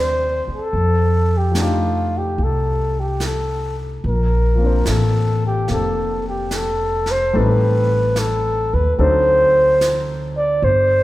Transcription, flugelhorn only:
0.00 0.47 C5 medium
0.55 1.39 A4 medium
1.38 1.64 G4 medium
1.62 2.19 F4 medium
2.17 2.45 G4 medium
2.43 3.01 A4 medium
3.00 3.23 G4 medium
3.26 3.76 A4 medium
4.07 4.91 A#4 medium
4.89 5.45 A4 medium
5.47 5.69 G4 medium
5.72 6.24 A4 medium
6.29 6.57 G4 medium
6.56 7.13 A4 medium
7.11 7.40 C5 medium
7.38 8.20 B4 medium
8.19 8.76 A4 medium
8.74 8.97 B4 medium
8.97 9.02 B4 medium
9.01 10.01 C5 medium
10.37 10.66 D5 medium
10.64 11.03 C5 medium

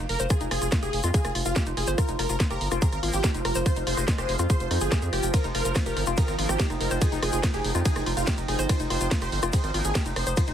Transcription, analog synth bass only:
0.09 0.17 F1 loud
0.20 0.27 F1 medium
0.41 0.48 F1 medium
0.51 0.59 F1 loud
0.62 0.69 F1 medium
0.83 0.90 F1 medium
0.93 1.01 F1 loud
1.04 1.11 F2 medium
1.25 1.32 F1 medium
1.35 1.43 F1 loud
1.46 1.53 F1 medium
1.67 1.74 F1 medium
1.77 1.84 F1 loud
1.88 1.95 G1 medium
2.09 2.16 F1 medium
2.19 2.26 F1 loud
2.29 2.37 F1 medium
2.50 2.58 F1 medium
2.61 2.68 G1 loud
2.71 2.79 F1 medium
2.92 3.00 G#1 medium
3.03 3.10 G#1 loud
3.13 3.21 G#1 loud
3.34 3.42 F1 medium
3.45 3.52 F1 loud
3.55 3.63 F1 medium
3.76 3.84 F1 medium
3.87 3.94 F1 loud
3.97 4.05 F1 medium
4.18 4.26 F1 medium
4.29 4.36 F1 loud
4.39 4.47 F2 loud
4.60 4.68 F1 medium
4.71 4.78 F2 loud
4.81 4.89 G1 loud
5.02 5.10 F2 medium
5.13 5.20 F1 loud
5.23 5.31 F1 medium
5.44 5.52 F1 medium
5.55 5.62 F1 loud
5.65 5.73 F1 medium
5.86 5.94 F1 medium
5.97 6.04 G1 loud
6.07 6.15 F1 medium
6.28 6.36 G#1 medium
6.39 6.46 G#1 loud
6.49 6.57 G#1 medium
6.70 6.78 F1 medium
6.81 6.88 F1 loud
6.91 6.98 F1 medium
7.12 7.19 F1 medium
7.22 7.30 F1 loud
7.33 7.40 F1 medium
7.54 7.61 F1 medium
7.64 7.72 F1 loud
7.75 7.82 F2 loud
7.96 8.03 F1 medium
8.06 8.14 F1 loud
8.17 8.24 F1 medium
8.38 8.45 F1 medium
8.48 8.56 F1 loud
8.59 8.66 G1 medium
8.80 8.87 F1 medium
8.90 8.98 F1 loud
9.01 9.08 F1 loud
9.22 9.29 F1 medium
9.32 9.40 G1 loud
9.43 9.50 F1 medium
9.64 9.71 G#1 medium
9.74 9.82 G#1 loud
9.85 9.92 G#1 loud
10.06 10.13 F1 medium
10.16 10.24 F1 loud
10.27 10.34 F1 medium
10.48 10.54 F1 medium

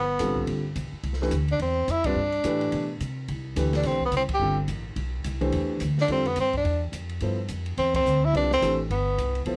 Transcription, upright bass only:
0.00 0.19 G1 medium
0.20 0.47 A1 medium
0.47 0.75 G1 medium
0.76 0.91 B1 medium
0.92 muted upright bass stroke soft
1.03 1.31 C2 medium
1.31 1.59 D2 medium
1.59 1.87 E2 medium
1.88 2.15 F2 medium
2.15 2.43 G2 medium
2.44 2.71 A2 medium
2.72 2.99 B2 medium
3.00 3.27 C3 medium
3.28 3.56 C2 medium
3.56 3.83 D2 medium
3.84 4.11 B1 medium
4.11 4.27 C2 medium
4.29 muted upright bass stroke soft
4.40 4.67 G1 medium
4.68 4.95 A1 medium
4.96 5.24 B1 medium
5.25 5.52 C2 medium
5.52 5.80 E2 medium
5.81 6.08 D2 medium
6.08 6.36 F2 medium
6.37 6.64 G2 medium
6.65 6.92 E2 medium
6.92 7.20 F2 medium
7.21 7.48 G2 medium
7.49 7.76 F2 medium
7.77 8.05 E2 medium
8.06 8.33 D2 medium
8.33 8.61 C2 medium
8.62 8.89 A1 medium
8.90 9.17 G1 medium
9.17 9.45 C2 medium
9.45 9.56 B1 medium

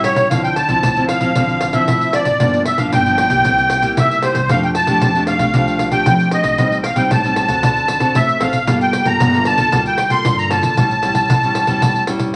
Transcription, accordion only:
0.03 0.28 C#5 medium
0.30 0.43 F5 medium
0.44 0.56 G5 medium
0.55 1.05 A5 medium
1.08 1.76 F5 medium
1.73 2.14 E5 medium
2.14 2.62 D5 medium
2.66 2.79 E5 medium
2.78 2.91 F5 medium
2.93 3.93 G5 medium
3.98 4.22 E5 medium
4.23 4.50 C5 medium
4.50 4.62 F5 medium
4.64 4.70 G5 medium
4.76 5.24 A5 medium
5.27 5.89 F5 medium
5.92 6.29 G5 medium
6.33 6.78 D#5 medium
6.82 6.97 F5 medium
6.82 6.85 G5 medium
6.97 7.11 G5 medium
7.11 8.19 A5 medium
8.15 8.42 E5 medium
8.42 8.78 F5 medium
8.82 9.08 G5 medium
9.06 9.47 A#5 medium
9.47 9.83 A5 loud
9.87 10.11 G5 medium
10.11 10.38 C6 loud
10.39 10.50 A#5 medium
10.50 12.04 A5 medium

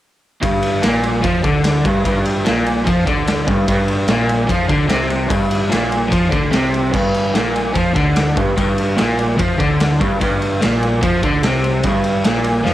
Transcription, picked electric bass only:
0.43 0.81 G1 medium
0.84 1.22 A#1 medium
1.25 1.43 F2 medium
1.45 1.83 D2 medium
1.86 2.04 G1 medium
2.06 2.43 G1 medium
2.48 2.84 A#1 loud
2.88 3.06 F2 medium
3.08 3.45 D2 loud
3.48 3.66 G1 medium
3.68 4.06 G1 medium
4.08 4.46 A#1 loud
4.50 4.69 F2 medium
4.70 4.89 D2 loud
4.91 5.28 C2 loud
5.31 5.69 G1 medium
5.73 6.10 A#1 loud
6.13 6.32 F2 loud
6.33 6.52 D2 medium
6.55 6.92 C2 medium
6.94 7.32 G1 medium
7.36 7.73 A#1 medium
7.76 7.95 F2 medium
7.96 8.34 D2 loud
8.38 8.57 G1 medium
8.58 8.96 G1 medium
9.00 9.37 A#1 medium
9.40 9.58 F2 loud
9.60 9.98 D2 loud
10.01 10.20 G1 medium
10.22 10.59 G1 medium
10.64 11.01 A#1 loud
11.03 11.22 F2 loud
11.24 11.42 D2 medium
11.44 11.81 C2 medium
11.85 12.22 G1 medium
12.26 12.63 A#1 medium
12.66 12.74 F2 medium

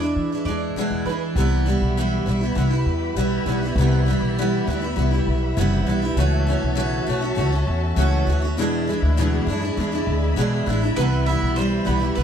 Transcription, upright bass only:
0.00 0.12 E2 medium
0.16 0.41 E3 medium
0.45 0.70 E2 medium
0.76 muted upright bass stroke soft
0.90 1.03 E2 medium
1.06 1.30 E3 medium
1.36 1.73 C2 loud
1.81 2.18 B1 medium
2.26 2.51 B1 medium
2.56 2.81 C2 loud
2.86 3.11 E2 medium
3.16 3.40 B1 medium
3.46 3.71 B1 medium
3.76 4.13 C2 loud
4.21 4.58 B1 medium
4.67 4.91 D2 medium
4.96 5.21 C2 medium
5.27 5.51 B1 medium
5.57 5.81 F#1 loud
5.87 6.11 B1 medium
6.16 6.53 C#2 loud
6.62 6.99 B1 medium
7.07 7.31 B1 medium
7.37 7.61 C#2 medium
7.67 7.91 E2 loud
7.96 8.21 C#2 loud
8.27 8.57 D2 medium
8.57 8.94 E2 loud
9.02 9.39 D2 medium
9.46 9.71 F#2 loud
9.77 10.01 E2 medium
10.07 10.31 D2 loud
10.37 10.61 B1 loud
10.67 10.91 A1 medium
10.97 11.33 C2 loud
11.42 11.78 B1 medium
11.87 12.11 B1 medium
12.17 12.23 C2 medium

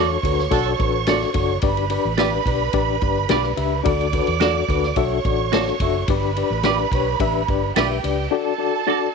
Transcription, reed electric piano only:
0.00 0.16 D4 medium
0.00 0.16 F#4 medium
0.00 0.17 A4 medium
0.00 0.17 C#5 medium
0.24 0.45 D4 medium
0.24 0.45 F#4 medium
0.24 0.45 A4 medium
0.24 0.46 B4 medium
0.51 0.72 D4 loud
0.51 0.72 F#4 loud
0.51 0.72 A4 loud
0.51 0.72 D5 loud
0.79 1.00 D4 medium
0.79 1.00 F#4 medium
0.79 1.01 A4 medium
0.79 1.01 B4 medium
1.08 1.28 D4 medium
1.08 1.28 F#4 medium
1.08 1.29 A4 medium
1.08 1.29 D5 medium
1.34 1.56 D4 medium
1.34 1.56 F#4 medium
1.34 1.56 A4 medium
1.34 1.56 D5 medium
1.63 1.84 D4 loud
1.63 1.84 G4 medium
1.63 1.84 B4 medium
1.63 1.84 D5 loud
1.90 2.12 D4 medium
1.90 2.12 G4 medium
1.90 2.12 B4 medium
1.90 2.12 D5 loud
2.19 2.40 D4 medium
2.19 2.40 G4 medium
2.19 2.40 B4 medium
2.19 2.41 D5 loud
2.46 2.68 D4 medium
2.46 2.68 G4 medium
2.46 2.68 B4 medium
2.46 2.68 D5 loud
2.74 2.95 D4 loud
2.74 2.95 G4 loud
2.74 2.95 B4 loud
2.74 2.95 D5 loud
3.02 3.23 D4 medium
3.02 3.23 G4 medium
3.02 3.24 B4 medium
3.02 3.24 D5 medium
3.29 3.51 D4 medium
3.29 3.51 G4 medium
3.29 3.51 B4 medium
3.29 3.51 D5 medium
3.57 3.78 D4 medium
3.57 3.79 G4 medium
3.57 3.79 B4 medium
3.57 3.79 E5 medium
3.84 4.06 D4 loud
3.84 4.06 F#4 medium
3.84 4.06 A4 loud
3.84 4.06 D5 loud
4.13 4.35 D4 medium
4.13 4.35 F#4 medium
4.13 4.35 A4 medium
4.13 4.35 B4 loud
4.41 4.62 D4 medium
4.41 4.63 F#4 medium
4.41 4.63 A4 medium
4.41 4.63 D5 medium
4.69 4.90 D4 medium
4.69 4.90 F#4 medium
4.69 4.90 A4 medium
4.69 4.90 B4 loud
4.97 5.18 D4 loud
4.97 5.18 F#4 loud
4.97 5.18 A4 medium
4.97 5.18 E5 loud
5.25 5.46 D4 medium
5.25 5.47 F#4 medium
5.25 5.47 A4 medium
5.25 5.47 D5 medium
5.53 5.74 D4 medium
5.53 5.74 F#4 medium
5.53 5.74 A4 medium
5.53 5.75 C#5 medium
5.81 6.02 D4 medium
5.81 6.02 F#4 medium
5.81 6.02 A4 medium
5.81 6.02 E5 loud
6.10 6.30 D4 loud
6.10 6.30 G4 loud
6.10 6.30 B4 loud
6.10 6.30 D5 loud
6.37 6.58 D4 medium
6.37 6.58 G4 medium
6.37 6.58 B4 medium
6.37 6.58 D5 loud
6.65 6.86 D4 medium
6.65 6.86 G4 medium
6.65 6.86 B4 medium
6.65 6.86 D5 medium
6.93 7.14 D4 medium
6.93 7.14 G4 medium
6.93 7.14 B4 medium
6.93 7.15 C#5 loud
7.20 7.41 D4 loud
7.20 7.41 G4 medium
7.20 7.41 B4 loud
7.20 7.42 E5 loud
7.49 7.69 D4 medium
7.49 7.70 G4 medium
7.49 7.70 B4 medium
7.49 7.70 D5 loud
7.76 7.97 D4 medium
7.76 7.97 G4 medium
7.76 7.97 B4 medium
7.76 7.98 E5 medium
8.04 8.25 D4 medium
8.04 8.25 G4 medium
8.04 8.25 B4 medium
8.04 8.25 D5 medium
8.31 8.52 D4 loud
8.31 8.52 F#4 medium
8.31 8.53 A4 loud
8.31 8.53 D5 loud
8.58 8.80 D4 medium
8.58 8.80 F#4 medium
8.58 8.80 A4 medium
8.58 8.80 D5 loud
8.87 9.08 D4 medium
8.87 9.08 F#4 medium
8.87 9.08 A4 medium
8.87 9.08 D5 loud

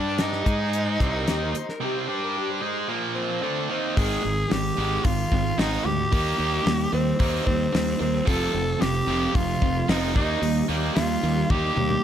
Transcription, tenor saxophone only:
0.00 0.23 D4 medium
0.21 2.09 D#4 medium
3.15 3.66 C4 medium
3.71 3.99 C4 medium
3.98 4.55 G#4 medium
4.53 5.06 G4 medium
5.05 5.60 F4 medium
5.59 5.87 D#4 medium
5.85 6.93 G4 loud
6.94 7.43 C4 medium
7.46 7.96 C4 loud
8.01 8.26 C4 medium
8.27 8.83 A4 loud
8.81 9.37 G4 loud
9.35 9.91 F4 loud
9.90 10.16 D#4 medium
10.16 10.66 D#4 medium
10.96 11.52 F4 medium
11.51 12.04 G4 loud

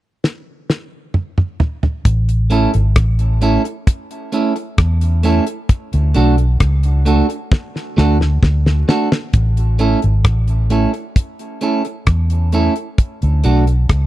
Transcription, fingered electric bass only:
2.06 2.65 A1 medium
2.75 2.94 G#1 medium
2.97 3.56 A1 medium
4.79 5.39 E2 medium
5.94 6.13 D2 medium
6.16 6.55 B1 medium
6.61 7.21 C#2 loud
7.98 8.37 D2 medium
8.43 8.83 D2 medium
9.34 9.94 A1 medium
10.04 10.23 G#1 medium
10.25 10.85 A1 medium
12.08 12.67 E2 medium
13.23 13.42 D2 medium
13.45 13.84 B1 medium
13.90 14.07 C#2 medium

